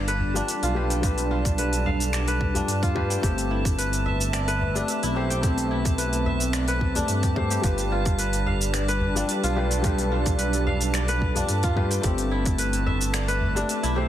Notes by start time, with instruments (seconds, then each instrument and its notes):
Already playing: analog synth bass G1, felt piano G3 F4 B4, analog synth pad G3 D4 A4 B4, kora F4 G4 D5 F5, synth texture A5
0.08 kora B4, open hi-hat, shaker
0.20 udu
0.34 felt piano G3 F4 D5, kora D4, shaker
0.48 open hi-hat, shaker
0.63 analog synth bass B1, kora F4, open hi-hat, shaker
0.75 felt piano G3 F4 B4, kora G4
0.90 kora G5, open hi-hat, shaker
1.01 felt piano G3 F4 B4, kora G4, kick, open hi-hat, shaker
1.18 open hi-hat, shaker
1.31 kora F4
1.45 kick, open hi-hat, shaker
1.58 kora B4, open hi-hat, shaker
1.73 open hi-hat, shaker
1.86 kora F5, udu
2.00 open hi-hat, shaker
2.13 kora D5, finger snap, open hi-hat, shaker
2.28 kora B4, open hi-hat, shaker
2.41 kick
2.54 felt piano G3 F4 D5, kora D4, open hi-hat, udu, shaker
2.68 analog synth bass G2, open hi-hat, shaker
2.83 kora F4, kick, open hi-hat, shaker
2.95 felt piano G3 F4 B4, kora G4, kick
3.10 kora G5, open hi-hat, shaker
3.21 analog synth bass G1, felt piano A3 C4 G4, analog synth pad A3, kora G4, kick, open hi-hat, shaker
3.38 open hi-hat, shaker
3.43 analog synth pad E5
3.51 kora E4
3.65 kick, open hi-hat, shaker
3.78 kora B4, open hi-hat, shaker
3.93 open hi-hat, shaker
4.06 kora E5, udu
4.15 analog synth pad C4
4.21 shaker
4.33 kora D5, finger snap, open hi-hat, shaker
4.48 kora B4, open hi-hat, shaker
4.61 udu
4.74 felt piano A3 G4 D5, kora D4, shaker
4.88 open hi-hat, shaker
5.03 analog synth bass B1, kora E4, open hi-hat, shaker
5.15 felt piano A3 G4 C5, kora G4
5.30 kora G5, open hi-hat, shaker
5.41 felt piano A3 G4, kora G4, kick, open hi-hat, shaker
5.45 felt piano C4
5.58 open hi-hat, shaker
5.71 kora E4
5.85 kick, open hi-hat, shaker
5.98 kora B4, open hi-hat, shaker
6.13 open hi-hat, shaker
6.26 kora E5, udu
6.40 open hi-hat, shaker
6.53 kora D5, finger snap, open hi-hat, shaker
6.68 kora B4, open hi-hat, shaker
6.81 kick
6.94 felt piano A3 G4 D5, kora D4, open hi-hat, udu, shaker
7.08 analog synth bass G2, open hi-hat, shaker
7.23 kora G4, kick, open hi-hat, shaker
7.35 felt piano A3 G4 C5, kick
7.50 kora G4, open hi-hat, shaker
7.61 analog synth bass G1, felt piano G3 F4 B4, analog synth pad G3, kora G4, kick, open hi-hat, shaker
7.78 open hi-hat, shaker
7.92 kora F4
8.05 kick, open hi-hat, shaker
8.18 analog synth pad D4, kora B4, open hi-hat, shaker
8.33 open hi-hat, shaker
8.43 analog synth pad A4, kora F5
8.47 udu
8.62 shaker
8.74 kora D5, finger snap, open hi-hat, shaker
8.88 kora B4, open hi-hat, shaker
9.01 udu
9.15 felt piano G3 F4 D5, kora D4, shaker
9.29 open hi-hat, shaker
9.44 analog synth bass B1, kora F4, open hi-hat, shaker
9.56 felt piano G3 F4 B4, kora G4
9.71 kora G5, open hi-hat, shaker
9.82 felt piano G3 F4 B4, kora G4, kick, open hi-hat, shaker
9.98 open hi-hat, shaker
10.12 kora F4
10.26 kick, open hi-hat, shaker
10.39 kora B4, open hi-hat, shaker
10.53 open hi-hat, shaker
10.67 kora F5, udu
10.81 open hi-hat, shaker
10.94 kora D5, finger snap, open hi-hat, shaker
11.08 kora B4, open hi-hat, shaker
11.22 kick
11.35 felt piano G3 F4 D5, kora D4, open hi-hat, udu, shaker
11.49 analog synth bass G2, open hi-hat, shaker
11.63 kora F4, kick, open hi-hat, shaker
11.76 felt piano G3 F4 B4, kora G4, kick
11.91 kora G5, open hi-hat, shaker
12.02 analog synth bass G1, felt piano A3 C4 G4, analog synth pad A3, kora G4, kick, open hi-hat, shaker
12.18 open hi-hat, shaker
12.31 kora E4
12.45 kick, open hi-hat, shaker
12.58 kora B4, open hi-hat, shaker
12.73 open hi-hat, shaker
12.86 kora E5, udu
13.01 shaker
13.14 kora D5, finger snap, open hi-hat, shaker
13.28 kora B4, open hi-hat, shaker
13.42 udu
13.46 analog synth pad C4
13.55 felt piano A3 G4 D5, kora D4, shaker
13.69 open hi-hat, shaker
13.83 analog synth bass B1, kora E4, open hi-hat, shaker
13.95 felt piano A3 G4 C5, kora G4